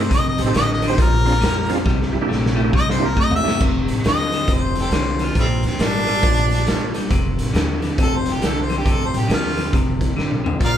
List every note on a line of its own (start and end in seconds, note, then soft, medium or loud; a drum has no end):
0.00 0.13 C5 medium
0.10 0.36 F1 medium
0.10 0.51 F2 medium
0.10 0.52 C3 loud
0.10 kick loud
0.10 snare soft
0.10 closed hi-hat medium
0.14 0.27 D#5 loud
0.29 0.45 D#5 medium
0.38 0.54 A1 medium
0.38 0.43 G4 medium
0.38 0.43 A4 medium
0.38 snare soft
0.38 closed hi-hat medium
0.43 0.55 C4 medium
0.43 0.55 D#4 medium
0.43 0.55 G4 medium
0.43 0.55 A4 medium
0.43 0.56 C5 medium
0.54 0.94 A1 medium
0.54 0.80 F2 medium
0.54 0.80 D3 loud
0.54 0.70 D#5 loud
0.54 snare loud
0.54 closed hi-hat medium
0.72 0.85 D#5 medium
0.81 0.97 F2 medium
0.81 0.97 D3 medium
0.81 0.86 G4 medium
0.81 0.86 A4 medium
0.81 snare soft
0.81 closed hi-hat medium
0.87 0.98 C4 medium
0.87 0.98 D#4 medium
0.87 0.98 G4 medium
0.87 1.00 C5 loud
0.87 0.98 C5 medium
0.97 1.37 A#1 medium
0.97 1.39 A#2 medium
0.97 1.39 F3 loud
0.97 kick loud
0.97 snare soft
0.97 closed hi-hat medium
1.02 1.85 A#4 loud
1.25 1.34 C4 medium
1.25 1.34 D4 medium
1.25 1.34 F4 medium
1.25 1.34 G#4 medium
1.25 snare soft
1.25 closed hi-hat medium
1.41 1.87 F2 medium
1.41 1.67 A#2 medium
1.41 1.67 G3 medium
1.41 snare loud
1.41 closed hi-hat medium
1.69 1.84 A#2 medium
1.69 1.84 G3 medium
1.69 1.78 C4 medium
1.69 1.78 D4 medium
1.69 1.78 F4 medium
1.69 1.78 G#4 loud
1.69 snare soft
1.69 closed hi-hat medium
1.85 2.11 C2 medium
1.85 2.26 C3 medium
1.85 2.27 G3 loud
1.85 kick loud
1.85 snare medium
2.02 snare medium
2.13 2.28 E2 medium
2.13 2.18 E4 loud
2.13 2.18 G4 loud
2.21 2.30 A#3 medium
2.21 2.30 D4 medium
2.21 2.30 E4 medium
2.21 2.30 G4 medium
2.29 2.69 A#1 medium
2.29 2.54 C3 medium
2.29 2.55 A3 medium
2.29 snare medium
2.46 snare medium
2.56 2.71 C3 medium
2.56 2.72 A3 medium
2.56 2.61 E4 medium
2.56 2.61 G4 loud
2.64 2.73 A#3 medium
2.64 2.73 D4 medium
2.64 2.73 E4 medium
2.64 2.73 G4 medium
2.73 3.12 C2 loud
2.73 3.14 C3 medium
2.73 3.14 G3 medium
2.73 2.90 D#5 loud
2.73 kick loud
2.90 3.07 C5 loud
2.90 snare medium
2.99 3.08 A#3 medium
2.99 3.09 D4 medium
2.99 3.09 E4 medium
2.99 3.09 G4 medium
3.05 3.19 A#4 medium
3.16 3.56 G2 medium
3.16 3.42 C3 medium
3.16 3.42 A3 loud
3.16 3.33 D#5 loud
3.16 kick medium
3.31 floor tom loud
3.35 3.62 E5 loud
3.43 3.60 C3 medium
3.43 3.60 A3 medium
3.43 3.52 A#3 medium
3.43 3.52 D4 medium
3.43 3.52 E4 medium
3.43 3.53 G4 medium
3.48 snare medium
3.61 3.86 F1 medium
3.61 4.02 F2 medium
3.61 4.03 C3 medium
3.61 kick loud
3.61 snare soft
3.61 crash medium
3.88 4.03 A1 medium
3.88 snare soft
3.88 closed hi-hat medium
4.04 4.44 D#2 medium
4.04 4.30 F2 medium
4.04 4.30 D3 medium
4.04 4.55 D#5 loud
4.04 snare loud
4.04 closed hi-hat medium
4.32 4.48 F2 medium
4.32 4.48 D3 medium
4.32 snare soft
4.32 closed hi-hat medium
4.47 4.87 F1 medium
4.47 4.90 F2 medium
4.47 4.90 C3 medium
4.47 kick loud
4.47 snare soft
4.47 closed hi-hat medium
4.53 4.78 C5 medium
4.75 snare soft
4.75 closed hi-hat medium
4.81 4.88 G4 medium
4.81 4.90 A4 medium
4.81 5.25 C5 medium
4.91 5.31 C2 medium
4.91 5.17 F2 medium
4.91 5.18 D3 medium
4.91 snare loud
4.91 closed hi-hat medium
5.19 5.35 F2 medium
5.19 5.35 D3 medium
5.19 snare soft
5.19 closed hi-hat medium
5.24 5.38 F4 medium
5.35 5.60 A#1 medium
5.35 5.77 A#2 medium
5.35 5.77 F3 medium
5.35 kick loud
5.35 snare soft
5.35 closed hi-hat medium
5.39 5.48 G3 medium
5.39 5.48 A3 medium
5.39 5.65 C4 medium
5.63 5.78 D2 medium
5.63 5.84 C4 medium
5.63 snare soft
5.63 closed hi-hat medium
5.79 6.18 G#1 medium
5.79 6.05 A#2 medium
5.79 6.05 G3 loud
5.79 7.09 D4 loud
5.79 snare loud
5.79 closed hi-hat medium
6.07 6.22 A#2 medium
6.07 6.22 G3 medium
6.07 snare soft
6.07 closed hi-hat medium
6.23 6.62 A#1 medium
6.23 6.64 A#2 medium
6.23 6.65 F3 loud
6.23 kick loud
6.23 snare soft
6.23 closed hi-hat medium
6.51 snare soft
6.51 closed hi-hat medium
6.67 7.06 G1 medium
6.67 6.93 A#2 medium
6.67 6.93 G3 medium
6.67 snare loud
6.67 closed hi-hat medium
6.94 7.10 A#2 medium
6.94 7.10 G3 medium
6.94 snare soft
6.94 closed hi-hat medium
7.10 7.36 F1 medium
7.10 7.51 F2 medium
7.10 7.52 C3 medium
7.10 kick loud
7.10 snare soft
7.10 closed hi-hat medium
7.39 7.53 A1 medium
7.39 snare soft
7.39 closed hi-hat medium
7.53 7.93 D#2 medium
7.53 7.79 F2 medium
7.53 7.79 D3 medium
7.53 snare loud
7.53 closed hi-hat medium
7.82 7.97 F2 medium
7.82 7.97 D3 medium
7.82 snare soft
7.82 closed hi-hat medium
7.98 8.37 F1 medium
7.98 8.39 F2 medium
7.98 8.39 C3 medium
7.98 kick loud
7.98 snare soft
7.98 closed hi-hat medium
8.02 8.19 A4 loud
8.18 8.34 C5 medium
8.26 snare soft
8.26 closed hi-hat medium
8.32 8.48 G4 medium
8.41 8.80 C2 medium
8.41 8.67 F2 medium
8.41 8.67 D3 medium
8.41 snare loud
8.41 closed hi-hat medium
8.46 8.59 A4 loud
8.62 8.74 C5 medium
8.69 8.84 F2 medium
8.69 8.84 D3 medium
8.69 snare soft
8.69 closed hi-hat medium
8.78 8.92 G4 medium
8.85 9.11 F1 medium
8.85 9.26 F2 medium
8.85 9.26 C3 medium
8.85 kick loud
8.85 snare soft
8.85 closed hi-hat medium
8.91 9.07 A4 loud
9.06 9.19 C5 medium
9.14 9.28 A1 medium
9.14 snare soft
9.14 closed hi-hat medium
9.18 9.31 G4 medium
9.28 9.68 D#2 medium
9.28 9.54 F2 medium
9.28 9.54 D3 medium
9.28 snare loud
9.28 closed hi-hat medium
9.33 9.74 F4 medium
9.56 9.71 F2 medium
9.56 9.72 D3 medium
9.56 snare soft
9.56 closed hi-hat medium
9.73 10.12 F1 medium
9.73 10.14 F2 medium
9.73 10.14 C3 loud
9.73 kick loud
9.73 snare soft
9.73 closed hi-hat medium
10.01 kick medium
10.01 snare soft
10.01 closed hi-hat medium
10.16 10.56 C2 medium
10.16 10.42 F2 medium
10.16 10.42 D3 medium
10.16 snare medium
10.31 mid tom medium
10.44 10.59 F2 medium
10.44 10.59 D3 medium
10.44 floor tom medium
10.59 10.78 A#1 medium
10.59 10.78 A#2 medium
10.59 10.78 F3 medium
10.59 kick loud
10.59 snare soft
10.59 closed hi-hat medium
10.59 splash medium
10.65 10.72 A#4 medium
10.65 10.71 D5 medium
10.65 10.78 F5 loud